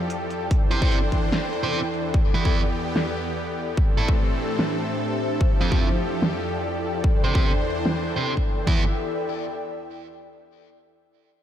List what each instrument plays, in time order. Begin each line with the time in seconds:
Already playing: supersaw synth F2 F3 G4 A4, analog synth pad F3 E4 A4 D5 G5
0.10 closed hi-hat
0.30 closed hi-hat
0.51 supersaw synth E2 E3 D4 C5, kick, closed hi-hat
0.71 distorted electric guitar C4 G4 C5, closed hi-hat
0.82 distorted electric guitar C4 G4 C5, kick
0.92 closed hi-hat
1.12 kick, closed hi-hat
1.32 snare, closed hi-hat
1.53 closed hi-hat
1.63 distorted electric guitar C4 G4 C5
1.73 closed hi-hat
1.94 closed hi-hat
2.14 supersaw synth E2 B3 G4, kick, closed hi-hat
2.34 distorted electric guitar E3 B3 E4, closed hi-hat
2.45 distorted electric guitar E3 B3 E4, kick
2.55 closed hi-hat
2.75 closed hi-hat
2.96 snare, closed hi-hat
3.16 closed hi-hat
3.37 closed hi-hat
3.57 closed hi-hat
3.77 supersaw synth A2 E3 C4 A4, analog synth pad A3, kick, closed hi-hat
3.93 analog synth pad G4
3.98 distorted electric guitar A3 E4 A4, closed hi-hat
4.08 analog synth pad D4, kick
4.18 closed hi-hat
4.39 closed hi-hat
4.51 analog synth pad C5 E5
4.59 snare, closed hi-hat
4.80 closed hi-hat
5.00 closed hi-hat
5.20 closed hi-hat
5.41 supersaw synth F2 F3 G4, analog synth pad F3, kick
5.49 analog synth pad E4
5.61 distorted electric guitar F3 C4 F4
5.72 distorted electric guitar F3 C4 F4, kick
5.99 analog synth pad A4 D5
6.07 analog synth pad G5
6.22 snare
7.04 supersaw synth E2 E3 D4 C5, kick
7.24 distorted electric guitar C4 G4 C5
7.35 distorted electric guitar C4 G4 C5, kick
7.86 snare
8.16 distorted electric guitar C4 G4 C5
8.37 kick
8.67 distorted electric guitar E3 B3 E4, supersaw synth E3 B3 G4 E5, analog synth pad E4, kick
8.74 analog synth pad A4
8.80 analog synth pad D5
8.86 analog synth pad G5